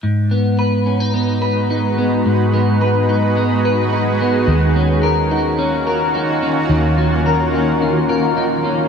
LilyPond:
<<
  \new Staff \with { instrumentName = "Ambient pad" } { \time 4/4 \key gis \dorian \tempo 4 = 108 << { <gis dis' fis' b'>1~ | <gis dis' fis' b'>1 | <dis ais cis' fis'>1~ | <dis ais cis' fis'>1 | } \\ { ais''1 | gis'1 | eis'1~ | eis'1 | } >> }
  \new Staff \with { instrumentName = "Clean electric guitar" } { \time 4/4 \key gis \dorian gis,8 b8 b'8 cis'16 dis'16 b8 b'8 dis'8 b8 | gis,8 b8 b'8 dis'8 b8 b'8 dis'8 b8 | dis8 cis'8 ais'8 dis'8 cis'8 ais'8 dis'8 cis'8 | dis8 cis'8 ais'8 dis'8 cis'8 ais'8 dis'8 cis'8 | }
  \new Staff \with { instrumentName = "Picked electric bass" } { \clef bass \time 4/4 \key gis \dorian r1 | r1 | dis,1 | dis,1 | }
>>